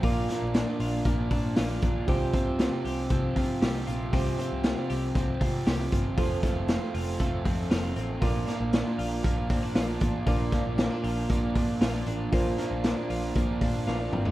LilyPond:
<<
  \new Staff \with { instrumentName = "Synth keys" } { \time 4/4 \key bes \lydian \tempo 4 = 117 <f' bes' d''>1 | <f' g' c''>1 | <f' g' c''>1 | <f' a' c''>1 |
<f' bes' d''>1 | <f' bes' d''>1 | <f' bes' c''>2. <f' bes' d''>4 | }
  \new Staff \with { instrumentName = "Clean electric guitar" } { \time 4/4 \key bes \lydian <bes, f'>8 bes8 d'8 f'8 bes8 d'8 f'8 d'8 | <c g'>8 c'8 f'8 g'8 c'8 f'8 g'8 f'8 | <c g'>8 c'8 f'8 g'8 c'8 f'8 g'8 f'8 | <f, f'>8 a8 c'8 f'8 a8 c'8 f'8 c'8 |
<bes, f'>8 bes8 d'8 f'8 bes8 c'16 d'16 f'8 d'8 | <bes, f'>8 bes8 c'16 d'16 f'8 bes8 d'8 f'8 d'8 | <bes, f'>8 bes8 d'8 f'8 bes8 d'8 f'8 c'16 d'16 | }
  \new Staff \with { instrumentName = "Overdriven electric guitar" } { \time 4/4 \key bes \lydian <f bes d' f'>8 <f bes d' f'>8. <bes d' f'>8. <f bes d' f'>8 <f bes d' f'>8. <bes, f bes d' f'>8. | <f c' f' g'>8 <f c' f' g'>8. <c' f' g'>8. <f c' f' g'>8 <f c' f' g'>8. <c f c' f' g'>8. | <f c' f' g'>8 <f c' f' g'>8. <c' f' g'>8. <f c' f' g'>8 <f c' f' g'>8. <c f c' f' g'>8. | <f a c' f'>8 <f a c' f'>8. <f a c' f'>8. <f a c' f'>8 <f a c' f'>8. <f, c f a c' f'>8. |
<f bes d' f'>8 <f bes d' f'>8. <bes d' f'>8. <f bes d' f'>8 <f bes d' f'>8. <bes, f bes d' f'>8. | <f bes d' f'>8 <f bes d' f'>8. <bes d' f'>8. <f bes d' f'>8 <f bes d' f'>8. <bes, f bes d' f'>8. | <f bes d' f'>8 <f bes d' f'>8. <bes d' f'>8. <f bes d' f'>8 <f bes d' f'>8. <bes, f bes d' f'>8. | }
  \new Staff \with { instrumentName = "Picked electric bass" } { \clef bass \time 4/4 \key bes \lydian bes,,8 r16 bes,,8 r16 bes,,8 bes,,8 bes,8 bes,,8 bes,,8 | c,8 r16 c,8 r16 c,8 c,8 c8 c,8 bes,,8 | c,8 r16 c,8 r16 c,8 c,8 c8 c,8 g,,8 | f,,8 r16 f,,8 r16 f,,8 f,,8 f,8 f,,8 a,,8 |
bes,,8 r16 bes,,8 r16 bes,,8 bes,,8 bes,8 bes,,8 a,,8 | bes,,8 r16 bes,,8 r16 bes,,8 bes,,8 bes,8 bes,,8 a,,8 | bes,,8 r16 bes,,8 r16 bes,,8 bes,,8 bes,8 bes,,8 g,,8 | }
  \new DrumStaff \with { instrumentName = "Drums" } \drummode { \time 4/4 <hho hhp bd>8 <hho hhp sn>8 <hho hhp sn>8 <hho hhp>8 <hho hhp bd>8 <hho hhp bd>8 <hho hhp sn>8 <hho hhp bd>8 | <hho hhp bd>8 <hho hhp bd>8 <hho hhp sn>8 <hho hhp>8 <hho hhp bd>8 <hho hhp bd>8 <hho hhp sn>8 <hho hhp>8 | <hho hhp bd>8 <hho hhp>8 <hho hhp sn>8 <hho hhp>8 <hho hhp bd>8 <hho hhp bd>8 <hho hhp sn>8 <hho hhp bd>8 | <hho hhp bd>8 <hho hhp bd sn>8 <hho hhp sn>8 <hho hhp>8 <hho hhp bd>8 <hho hhp bd>8 <hho hhp sn>8 <hho hhp>8 |
<hho hhp bd>8 <hho hhp sn>8 <hho hhp sn>8 <hho hhp>8 <hho hhp bd>8 <hho hhp bd>8 <hho hhp sn>8 <hho hhp bd>8 | <hho hhp bd>8 <hho hhp bd sn>8 <hho hhp sn>8 <hho hhp>8 <hho hhp bd>8 <hho hhp bd>8 <hho hhp sn>8 <hho hhp>8 | <hho hhp bd>8 <hho hhp sn>8 <hho hhp sn>8 <hho hhp>8 <hho hhp bd>8 <hho hhp bd>8 sn8 toml16 tomfh16 | }
>>